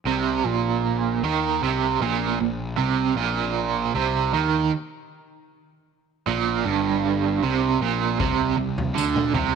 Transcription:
0.05 0.42 C2 medium
0.05 0.46 C3 loud
0.45 1.19 A#1 medium
0.45 1.22 A#2 loud
1.23 1.59 D#2 medium
1.23 1.61 D#3 loud
1.62 1.98 C2 loud
1.62 2.00 C3 loud
2.01 2.37 A#1 medium
2.01 2.39 A#2 loud
2.40 2.76 A#1 medium
2.40 2.71 A#2 medium
2.77 3.14 C2 medium
2.77 3.15 C3 medium
3.16 3.90 A#1 medium
3.16 3.93 A#2 loud
3.95 4.31 C2 loud
3.95 4.32 C3 loud
4.34 4.70 D#2 medium
4.34 4.71 D#3 loud
6.27 6.63 A#1 medium
6.27 6.64 A#2 loud
6.65 7.39 G1 medium
6.65 7.41 G2 loud
7.42 7.78 C2 medium
7.42 7.80 C3 medium
7.81 8.17 A#1 medium
7.81 8.19 A#2 medium
8.20 8.56 C2 medium
8.20 8.56 C3 loud
8.20 kick loud
8.20 floor tom medium
8.58 8.94 C2 medium
8.58 8.89 C3 medium
8.78 floor tom medium
8.95 9.32 D2 medium
8.95 9.34 D3 medium
8.95 tambourine medium
9.16 mid tom medium
9.34 9.55 C2 medium
9.34 9.55 C3 loud
9.34 floor tom medium

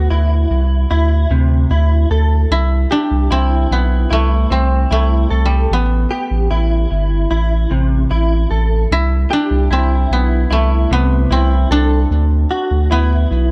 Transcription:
0.00 1.40 A3 medium
0.00 2.01 B3 medium
0.00 0.10 F#4 medium
0.10 0.46 D2 medium
0.10 0.89 E4 medium
0.50 0.86 C2 medium
0.91 1.26 D2 loud
0.91 1.31 E4 medium
1.30 1.66 D2 loud
1.30 1.71 C3 medium
1.70 2.06 D2 loud
1.70 2.11 E4 medium
2.10 2.46 D2 loud
2.10 2.51 A4 medium
2.51 2.86 C2 loud
2.51 4.78 E4 loud
2.91 5.34 D4 loud
2.91 3.30 G4 medium
3.11 3.28 C2 medium
3.31 3.66 C2 medium
3.31 3.78 C4 loud
3.31 4.09 E4 medium
3.71 4.06 B1 loud
3.71 4.58 B3 medium
4.11 4.46 C2 loud
4.11 4.92 A3 loud
4.11 4.51 E4 medium
4.50 4.86 C2 loud
4.50 4.91 C4 medium
4.50 5.79 C4 medium
4.91 5.26 C2 loud
4.91 7.81 A3 medium
4.91 5.30 E4 medium
5.30 5.66 C2 loud
5.30 5.71 A4 medium
5.46 5.76 G3 medium
5.71 6.06 A1 loud
5.71 8.42 B3 medium
6.11 6.50 G4 medium
6.31 6.48 A1 loud
6.51 6.86 A1 loud
6.51 7.29 E4 medium
6.91 7.26 G1 loud
7.31 7.66 A1 loud
7.31 7.71 E4 medium
7.71 8.06 A1 medium
7.71 8.11 C3 medium
8.11 8.46 A1 loud
8.11 8.50 E4 medium
8.51 8.86 A1 loud
8.51 8.91 A4 medium
8.91 9.26 C2 loud
8.91 11.19 E4 loud
9.31 11.71 D4 loud
9.31 9.70 G4 medium
9.51 9.68 C2 loud
9.71 10.06 C2 loud
9.71 10.19 C4 loud
9.71 10.49 E4 medium
10.11 10.46 B1 medium
10.11 10.92 B3 medium
10.51 10.86 C2 loud
10.51 13.41 A3 medium
10.51 10.91 E4 medium
10.91 11.26 C2 loud
10.91 11.31 C3 medium
10.91 11.38 B3 loud
11.31 11.66 C2 loud
11.31 12.98 C4 loud
11.31 11.70 E4 medium
11.70 12.06 C2 loud
11.70 13.52 D4 loud
11.70 12.11 A4 medium
12.11 12.46 D2 loud
12.51 12.90 F#4 medium
12.71 12.88 D2 medium
12.91 13.26 D2 loud
12.91 13.52 B3 medium
12.91 13.52 E4 medium
13.31 13.52 B1 medium

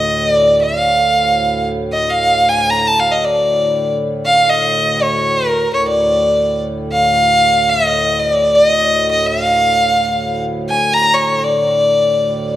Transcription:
0.00 5.66 D2 medium
0.00 5.66 A2 medium
0.00 0.30 D#5 medium
0.30 0.59 D5 medium
0.63 1.65 F5 medium
1.93 2.12 D#5 medium
2.10 2.50 F5 medium
2.49 2.72 G#5 medium
2.70 2.89 A#5 medium
2.87 3.01 A5 medium
3.00 3.13 F5 medium
3.12 3.26 D#5 medium
3.25 3.94 D5 medium
4.26 4.51 F5 medium
4.50 5.04 D#5 medium
5.03 5.50 C#5 medium
5.50 5.72 A#4 medium
5.67 12.56 D2 medium
5.67 12.56 A2 medium
5.73 5.87 C#5 medium
5.88 6.61 D5 medium
6.92 7.71 F5 medium
7.69 8.21 D#5 medium
8.19 8.55 D5 medium
8.55 8.66 D5 medium
8.66 9.10 D#5 medium
9.11 9.29 D#5 medium
9.27 10.42 F5 medium
10.69 10.95 G#5 medium
10.94 11.15 A#5 medium
11.14 11.45 C#5 medium
11.44 12.56 D5 medium

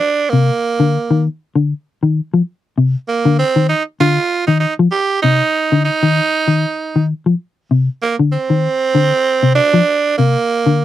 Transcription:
0.00 0.31 D4 loud
0.29 0.50 C3 medium
0.29 1.23 A#3 medium
0.80 0.97 D3 medium
1.11 1.27 D#3 medium
1.56 1.72 D3 medium
2.03 2.20 D#3 medium
2.34 2.41 F3 medium
2.78 2.95 C3 medium
3.08 3.37 A#3 medium
3.25 3.42 D3 medium
3.39 3.68 C4 medium
3.56 3.73 D#3 medium
3.69 3.83 D#4 medium
4.00 4.17 D3 medium
4.00 4.45 F4 loud
4.47 4.65 D#3 medium
4.47 4.59 D#4 medium
4.60 4.74 D#4 medium
4.79 4.87 F3 medium
4.91 5.21 G4 loud
5.22 5.41 C3 medium
5.22 5.81 D#4 loud
5.72 5.89 D3 medium
5.85 7.04 D#4 medium
6.03 6.20 D#3 medium
6.48 6.64 D#3 medium
6.96 7.12 D#3 medium
7.26 7.34 F3 medium
7.71 7.88 C3 medium
8.02 8.16 A#3 medium
8.19 8.36 D3 medium
8.32 9.52 C4 loud
8.50 8.67 D#3 medium
8.95 9.11 D3 medium
9.43 9.59 C3 medium
9.55 10.13 D4 loud
9.74 9.81 F3 medium
10.18 10.35 C3 medium
10.18 10.85 A#3 medium
10.66 10.83 D3 medium

